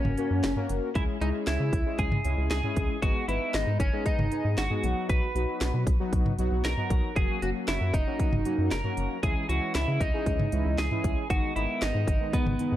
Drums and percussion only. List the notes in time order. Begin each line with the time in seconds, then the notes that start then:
0.05 mid tom
0.18 closed hi-hat
0.44 snare, closed hi-hat
0.56 mid tom
0.69 closed hi-hat
0.95 kick, closed hi-hat
1.21 closed hi-hat
1.47 snare, closed hi-hat
1.73 kick, closed hi-hat
1.99 kick, closed hi-hat
2.12 mid tom
2.25 closed hi-hat
2.51 snare, closed hi-hat
2.63 mid tom
2.76 kick, closed hi-hat
3.02 kick, closed hi-hat
3.29 closed hi-hat
3.54 snare, closed hi-hat
3.80 kick, closed hi-hat
4.06 kick, closed hi-hat
4.19 mid tom
4.32 closed hi-hat
4.58 snare, closed hi-hat
4.70 mid tom
4.84 closed hi-hat
5.09 kick, closed hi-hat
5.36 closed hi-hat
5.61 snare, closed hi-hat
5.87 kick, closed hi-hat
6.13 kick, closed hi-hat
6.26 mid tom
6.39 closed hi-hat
6.65 snare, closed hi-hat
6.77 mid tom
6.90 kick, closed hi-hat
7.16 kick, closed hi-hat
7.42 closed hi-hat
7.68 snare, closed hi-hat
7.94 kick, closed hi-hat
8.19 kick, closed hi-hat
8.33 mid tom
8.45 closed hi-hat
8.71 snare, closed hi-hat
8.84 mid tom
8.97 closed hi-hat
9.23 kick, closed hi-hat
9.49 closed hi-hat
9.75 snare, closed hi-hat
10.01 kick, closed hi-hat
10.26 kick, closed hi-hat
10.40 mid tom
10.52 closed hi-hat
10.78 snare, closed hi-hat
10.91 mid tom
11.04 kick, closed hi-hat
11.30 kick, closed hi-hat
11.56 closed hi-hat
11.82 snare, closed hi-hat
12.07 kick, closed hi-hat
12.33 kick, closed hi-hat
12.47 mid tom
12.59 closed hi-hat